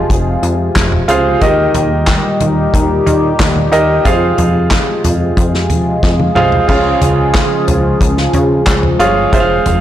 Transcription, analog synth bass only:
0.10 0.37 F1 medium
0.43 0.70 F2 medium
0.76 1.03 F1 medium
1.09 1.36 C#2 medium
1.42 1.69 D#2 medium
1.75 2.15 D#2 loud
2.41 2.68 D#2 medium
2.74 3.01 D#2 loud
3.06 3.33 D#3 medium
3.40 3.67 D#2 medium
3.73 4.00 D#2 medium
4.05 4.32 F2 loud
4.38 4.79 F2 medium
5.05 5.32 F2 medium
5.37 5.71 F2 loud
5.70 5.97 F3 medium
6.03 6.30 F2 loud
6.35 6.63 C2 medium
6.69 6.96 C#2 loud
7.01 7.42 C#2 medium
7.68 7.95 C#2 medium
8.01 8.28 C#2 loud
8.34 8.61 C#3 loud
8.67 8.94 C#2 medium
8.99 9.27 G1 medium
9.33 9.60 F1 medium
9.66 9.81 F1 medium

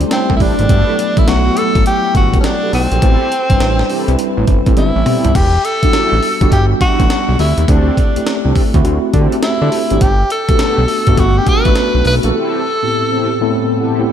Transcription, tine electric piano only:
0.00 0.11 G3 loud
0.00 0.12 A3 medium
0.00 0.12 C4 medium
0.00 0.71 D4 medium
0.00 0.12 E4 loud
0.11 0.34 G3 medium
0.11 0.34 A3 medium
0.11 0.35 C4 medium
0.11 0.35 E4 medium
0.40 0.63 G3 medium
0.40 0.63 A3 medium
0.40 0.64 C4 medium
0.40 0.64 E4 medium
0.70 0.83 F#3 medium
0.70 0.83 A3 medium
0.70 0.83 B3 medium
0.70 0.83 D4 medium
0.89 1.07 F#3 medium
0.89 1.07 A3 medium
0.89 1.07 B3 medium
0.89 1.07 E4 medium
1.18 1.25 F#3 medium
1.18 1.25 A3 medium
1.18 1.25 B3 medium
1.18 1.25 E4 medium
1.28 2.12 F#3 medium
1.28 2.13 A3 medium
1.28 2.13 B3 medium
1.28 2.13 E4 medium
3.50 3.88 G3 medium
3.50 3.89 C4 medium
3.50 3.55 D4 medium
3.50 3.88 B4 medium
3.58 3.92 E4 medium
4.09 4.59 G3 medium
4.09 4.59 C4 medium
4.09 4.59 E4 loud
4.09 4.59 B4 medium
4.77 5.00 G3 medium
4.77 5.00 B3 medium
4.77 5.00 C4 medium
4.77 5.01 E4 loud
5.06 5.29 G3 medium
5.06 5.30 B3 medium
5.06 5.30 C4 medium
5.06 5.30 E4 loud
5.83 6.21 G3 medium
5.83 6.22 B3 medium
5.83 6.22 D4 medium
5.83 6.22 F#4 medium
6.41 6.79 G3 medium
6.41 6.80 B3 medium
6.41 6.80 D4 medium
6.41 6.80 F#4 loud
7.00 7.38 G3 medium
7.00 7.38 B3 medium
7.00 7.38 D4 medium
7.00 7.38 F#4 medium
7.39 7.97 A3 medium
7.39 7.98 C4 medium
7.39 7.98 E4 medium
7.39 7.98 G4 medium
8.16 8.54 A3 medium
8.16 8.55 C4 medium
8.16 8.55 E4 medium
8.16 8.55 G4 medium
8.75 9.13 A3 loud
8.75 9.13 C4 loud
8.75 9.13 E4 loud
8.75 9.13 F#4 loud
9.32 9.71 A3 medium
9.32 9.71 C4 medium
9.32 9.71 E4 medium
9.32 9.71 G4 medium
9.91 10.01 A3 medium
9.91 10.01 C4 medium
9.91 10.02 E4 medium
9.91 10.02 G4 medium
10.49 10.87 A3 medium
10.49 10.87 B3 medium
10.49 10.88 D4 medium
10.49 10.88 F#4 medium
11.07 11.45 A3 medium
11.07 11.46 B3 medium
11.07 11.46 D4 medium
11.07 11.46 F#4 loud
11.65 12.04 A3 medium
11.65 12.04 B3 medium
11.65 12.04 D4 medium
11.65 12.04 F#4 loud
12.24 12.34 A3 medium
12.24 12.34 B3 medium
12.24 12.35 D4 medium
12.24 12.35 F#4 medium
12.82 13.20 A2 medium
12.82 13.21 B3 medium
12.82 13.21 C4 medium
12.82 13.21 E4 medium
12.82 13.21 G4 medium
13.41 13.79 A2 loud
13.41 13.79 B3 loud
13.41 13.79 C4 medium
13.41 13.79 E4 loud
13.41 13.79 A4 loud
13.81 14.07 F#5 medium
13.99 14.12 A2 medium
13.99 14.12 B3 medium
13.99 14.12 C4 medium
13.99 14.12 E4 medium
13.99 14.12 G4 medium

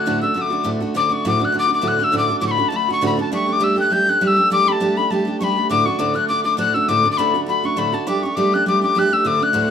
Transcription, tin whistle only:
0.00 0.21 F#6 medium
0.22 0.37 E6 medium
0.37 0.43 E6 medium
0.42 0.70 D6 medium
0.97 1.07 D6 loud
1.07 1.14 D6 medium
1.13 1.25 C#6 medium
1.28 1.46 D6 loud
1.45 1.56 F#6 medium
1.59 1.71 D6 loud
1.74 1.89 D6 medium
1.88 2.05 F#6 loud
2.04 2.16 E6 loud
2.18 2.37 D6 loud
2.40 2.45 D6 medium
2.47 2.52 C#6 medium
2.51 2.70 B5 medium
2.69 2.78 A5 medium
2.76 2.90 B5 loud
2.92 3.04 C#6 medium
3.06 3.19 B5 loud
3.21 3.33 A5 medium
3.34 3.54 C#6 loud
3.53 3.65 D6 loud
3.64 3.79 E6 medium
3.80 3.94 F#6 loud
3.92 4.11 G6 loud
4.09 4.23 F#6 loud
4.23 4.28 F#6 loud
4.27 4.52 E6 loud
4.53 4.70 D6 loud
4.68 4.73 B5 medium
4.72 4.99 A5 medium
4.97 5.12 B5 loud
5.11 5.40 A5 medium
5.40 5.68 B5 loud
5.40 5.45 C#6 loud
5.70 5.87 D6 loud
5.86 6.00 C#6 loud
5.99 6.17 D6 loud
6.15 6.28 F#6 loud
6.28 6.43 D6 loud
6.44 6.57 D6 medium
6.59 6.76 F#6 loud
6.74 6.90 E6 loud
6.88 7.11 D6 loud
7.11 7.19 D6 medium
7.17 7.40 B5 medium
7.48 7.67 B5 medium
7.66 7.80 C#6 medium
7.79 7.95 B5 medium
7.94 8.09 A5 medium
8.07 8.20 D6 medium
8.20 8.37 C#6 medium
8.20 8.24 D6 medium
8.35 8.55 D6 loud
8.54 8.67 F#6 medium
8.68 8.82 D6 loud
8.83 9.00 D6 medium
8.99 9.15 F#6 loud
9.13 9.29 E6 medium
9.27 9.45 D6 loud
9.43 9.71 F#6 medium

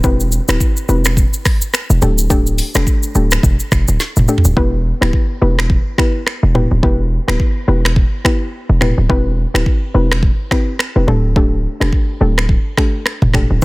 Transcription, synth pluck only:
0.04 0.45 C4 loud
0.04 0.45 E4 medium
0.04 0.45 G4 medium
0.04 0.45 B4 loud
0.48 0.86 C4 medium
0.48 0.86 E4 medium
0.48 0.86 G4 medium
0.48 0.86 B4 medium
0.89 1.15 C4 medium
0.89 1.15 E4 medium
0.89 1.15 G4 medium
0.89 1.15 B4 medium
2.02 2.28 A3 medium
2.02 2.28 D4 medium
2.02 2.29 G4 medium
2.02 2.29 A4 medium
2.30 2.71 A3 loud
2.30 2.71 D4 medium
2.30 2.71 G4 medium
2.30 2.71 A4 loud
2.75 3.12 A3 medium
2.75 3.12 D4 medium
2.75 3.13 G4 medium
2.75 3.13 A4 medium
3.15 3.42 A3 medium
3.15 3.42 D4 medium
3.15 3.42 G4 medium
3.15 3.42 A4 medium
4.28 4.55 A3 medium
4.28 4.55 D4 medium
4.28 4.55 G4 medium
4.28 4.55 A4 medium
4.57 4.79 B3 loud
4.57 4.79 E4 medium
4.57 4.79 G4 medium
4.57 4.79 B4 loud
5.01 5.39 B3 medium
5.01 5.39 E4 medium
5.01 5.39 G4 medium
5.01 5.39 B4 medium
5.41 5.68 B3 medium
5.41 5.68 E4 medium
5.41 5.68 G4 medium
5.41 5.68 B4 medium
5.98 6.20 B3 medium
5.98 6.20 E4 medium
5.98 6.21 G4 medium
5.98 6.21 B4 medium
6.55 6.77 B3 medium
6.55 6.77 E4 medium
6.55 6.77 G4 medium
6.55 6.77 B4 medium
6.83 7.05 B3 medium
6.83 7.05 E4 medium
6.83 7.05 G4 medium
6.83 7.06 B4 loud
7.28 7.65 B3 medium
7.28 7.65 E4 medium
7.28 7.65 G4 medium
7.28 7.65 B4 medium
7.68 7.94 B3 medium
7.68 7.94 E4 medium
7.68 7.94 G4 medium
7.68 7.95 B4 medium
8.25 8.47 B3 medium
8.25 8.47 E4 medium
8.25 8.47 G4 medium
8.25 8.47 B4 medium
8.81 9.03 B3 medium
8.81 9.03 E4 medium
8.81 9.04 G4 medium
8.81 9.04 B4 medium
9.09 9.32 C4 medium
9.09 9.32 E4 medium
9.09 9.32 G4 medium
9.09 9.32 B4 loud
9.54 9.92 C4 medium
9.54 9.92 E4 medium
9.54 9.92 G4 medium
9.54 9.92 B4 medium
9.94 10.21 C4 medium
9.94 10.21 E4 medium
9.94 10.21 G4 medium
9.94 10.21 B4 medium
10.51 10.73 C4 medium
10.51 10.73 E4 medium
10.51 10.73 G4 medium
10.51 10.74 B4 medium
10.96 11.16 C4 medium
10.96 11.16 E4 medium
10.96 11.07 G4 medium
10.96 11.16 B4 medium
11.08 11.34 A3 medium
11.08 11.34 D4 medium
11.08 11.34 G4 medium
11.08 11.34 A4 loud
11.36 11.58 A3 medium
11.36 11.58 D4 medium
11.36 11.58 G4 medium
11.36 11.59 A4 loud
11.80 12.18 A3 medium
11.80 12.18 D4 medium
11.80 12.18 G4 medium
11.80 12.18 A4 medium
12.21 12.47 A3 medium
12.21 12.47 D4 medium
12.21 12.47 G4 medium
12.21 12.48 A4 medium
12.77 13.00 A3 medium
12.77 13.00 D4 medium
12.77 13.00 G4 medium
12.77 13.00 A4 medium
13.34 13.56 A3 medium
13.34 13.56 D4 medium
13.34 13.57 G4 medium
13.34 13.57 A4 medium

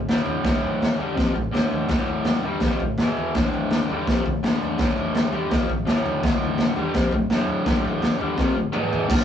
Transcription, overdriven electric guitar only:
0.09 0.44 D2 medium
0.09 0.44 A2 medium
0.09 0.45 D3 medium
0.45 0.98 D2 loud
0.45 0.98 A2 medium
0.45 0.98 D3 medium
0.98 1.15 G2 medium
0.98 1.16 D3 loud
0.98 1.17 G3 medium
1.15 1.33 F2 medium
1.15 1.34 C3 loud
1.15 1.35 F3 loud
1.34 1.49 D2 medium
1.34 1.49 A2 medium
1.52 1.88 D2 medium
1.52 1.89 A2 medium
1.52 1.89 D3 medium
1.91 2.44 D2 medium
1.91 2.44 A2 loud
1.91 2.44 D3 loud
2.44 2.61 G2 medium
2.44 2.62 D3 medium
2.44 2.63 G3 medium
2.64 2.81 F2 medium
2.64 2.81 C3 loud
2.64 2.81 F3 loud
2.82 2.95 D2 soft
2.82 2.96 A2 medium
3.00 3.34 E2 medium
3.00 3.35 B2 medium
3.00 3.35 E3 medium
3.35 3.88 D2 medium
3.35 3.89 A2 medium
3.35 3.89 D3 loud
3.90 4.06 G2 medium
3.90 4.07 D3 medium
3.90 4.07 G3 medium
4.08 4.25 F2 medium
4.08 4.25 C3 loud
4.08 4.25 F3 loud
4.26 4.39 D2 medium
4.26 4.39 A2 medium
4.43 4.78 D2 medium
4.43 4.79 A2 medium
4.43 4.79 D3 medium
4.80 5.31 D2 medium
4.80 5.32 A2 medium
4.80 5.31 D3 medium
5.31 5.49 G2 medium
5.31 5.50 D3 loud
5.31 5.51 G3 medium
5.50 5.68 F2 medium
5.50 5.68 C3 loud
5.50 5.69 F3 loud
5.68 5.83 D2 medium
5.68 5.83 A2 medium
5.86 6.21 D2 medium
5.86 6.22 A2 medium
5.86 6.22 D3 medium
6.23 6.76 D2 medium
6.23 6.77 A2 medium
6.23 6.76 D3 medium
6.77 6.94 G2 medium
6.77 6.94 D3 medium
6.77 6.95 G3 loud
6.95 7.12 F2 loud
6.95 7.12 C3 loud
6.95 7.13 F3 loud
7.14 7.28 D2 medium
7.14 7.27 A2 medium
7.30 7.63 D2 medium
7.30 7.65 A2 medium
7.30 7.65 D3 medium
7.65 8.19 D2 loud
7.65 8.20 A2 loud
7.65 8.19 D3 loud
8.19 8.37 G2 medium
8.19 8.37 D3 medium
8.19 8.38 G3 medium
8.37 8.55 F2 medium
8.37 8.55 C3 medium
8.37 8.56 F3 medium
8.56 8.72 D2 soft
8.56 8.72 A2 medium
8.72 9.07 E2 medium
8.72 9.08 B2 medium
8.72 9.09 E3 medium
9.07 9.24 D2 medium
9.07 9.24 A2 loud
9.07 9.24 D3 medium
9.07 9.24 A3 loud
9.07 9.24 F4 medium

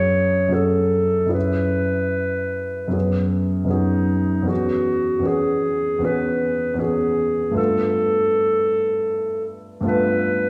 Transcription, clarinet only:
0.00 0.55 C#5 medium
0.54 1.33 A4 soft
1.33 3.28 B4 medium
3.72 4.50 D#4 soft
4.49 5.29 F#4 medium
5.27 6.06 G#4 medium
6.05 6.82 B4 medium
6.80 7.57 G#4 medium
7.57 9.46 A4 medium
9.87 10.49 B4 medium

